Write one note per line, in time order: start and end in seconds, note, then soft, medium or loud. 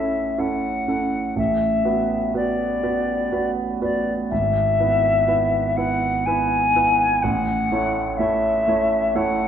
0.00 1.36 A1 soft
0.00 0.38 C#4 soft
0.00 0.39 E4 soft
0.00 0.39 A4 soft
0.00 0.41 E5 soft
0.38 0.85 C#4 soft
0.38 0.85 E4 soft
0.38 0.85 A4 soft
0.38 1.37 F#5 medium
0.88 1.33 C#4 soft
0.88 1.33 E4 soft
0.88 1.33 A4 soft
1.36 1.84 A1 soft
1.36 2.34 E5 medium
1.85 2.31 B3 soft
1.85 2.31 F#4 soft
1.85 2.31 B4 soft
2.34 2.80 B3 soft
2.34 2.80 F#4 soft
2.34 2.80 B4 soft
2.34 3.51 D5 soft
2.83 3.28 B3 soft
2.83 3.29 F#4 soft
2.83 3.29 B4 soft
3.32 3.78 B3 soft
3.32 3.78 F#4 soft
3.32 3.78 B4 soft
3.81 4.27 B3 soft
3.81 4.27 F#4 soft
3.81 4.27 B4 soft
3.81 4.13 D5 soft
4.30 4.78 G#1 soft
4.30 5.78 E5 medium
4.80 5.24 B3 soft
4.80 5.24 E4 soft
4.80 5.24 B4 soft
5.27 5.72 B3 soft
5.27 5.72 E4 soft
5.27 5.73 B4 soft
5.77 6.22 B3 soft
5.77 6.22 E4 soft
5.77 6.23 B4 soft
5.77 6.27 F#5 medium
6.26 6.71 B3 soft
6.26 6.71 E4 soft
6.26 6.72 B4 soft
6.26 7.24 G#5 medium
6.75 7.20 B3 soft
6.75 7.20 E4 soft
6.75 7.20 B4 soft
7.22 7.70 A1 soft
7.22 8.19 F#5 medium
7.72 8.15 A3 soft
7.72 8.15 E4 soft
7.72 8.15 C#5 soft
8.17 8.63 A3 soft
8.17 8.63 E4 soft
8.17 8.63 C#5 soft
8.17 9.17 E5 medium
8.68 9.11 A3 soft
8.68 9.12 E4 soft
8.68 9.12 C#5 soft
9.15 9.48 A3 soft
9.15 9.48 E4 soft
9.15 9.48 C#5 soft
9.15 9.48 F#5 medium